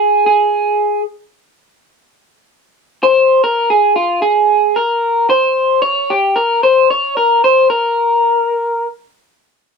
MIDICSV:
0, 0, Header, 1, 2, 480
1, 0, Start_track
1, 0, Tempo, 798935
1, 1588, Time_signature, 4, 2, 24, 8
1, 5874, End_track
2, 0, Start_track
2, 0, Title_t, "Clean electric guitar"
2, 0, Program_c, 0, 27
2, 0, Note_on_c, 0, 68, 86
2, 151, Note_off_c, 0, 68, 0
2, 158, Note_on_c, 0, 68, 80
2, 609, Note_off_c, 0, 68, 0
2, 1821, Note_on_c, 0, 72, 89
2, 2063, Note_off_c, 0, 72, 0
2, 2065, Note_on_c, 0, 70, 91
2, 2215, Note_off_c, 0, 70, 0
2, 2224, Note_on_c, 0, 68, 82
2, 2376, Note_off_c, 0, 68, 0
2, 2378, Note_on_c, 0, 65, 82
2, 2532, Note_off_c, 0, 65, 0
2, 2535, Note_on_c, 0, 68, 99
2, 2861, Note_on_c, 0, 70, 79
2, 2871, Note_off_c, 0, 68, 0
2, 3161, Note_off_c, 0, 70, 0
2, 3182, Note_on_c, 0, 72, 93
2, 3482, Note_off_c, 0, 72, 0
2, 3496, Note_on_c, 0, 73, 112
2, 3666, Note_on_c, 0, 67, 94
2, 3667, Note_off_c, 0, 73, 0
2, 3815, Note_off_c, 0, 67, 0
2, 3820, Note_on_c, 0, 70, 93
2, 3982, Note_off_c, 0, 70, 0
2, 3985, Note_on_c, 0, 72, 106
2, 4146, Note_off_c, 0, 72, 0
2, 4148, Note_on_c, 0, 73, 101
2, 4304, Note_off_c, 0, 73, 0
2, 4307, Note_on_c, 0, 70, 86
2, 4468, Note_off_c, 0, 70, 0
2, 4471, Note_on_c, 0, 72, 97
2, 4623, Note_off_c, 0, 72, 0
2, 4625, Note_on_c, 0, 70, 96
2, 5323, Note_off_c, 0, 70, 0
2, 5874, End_track
0, 0, End_of_file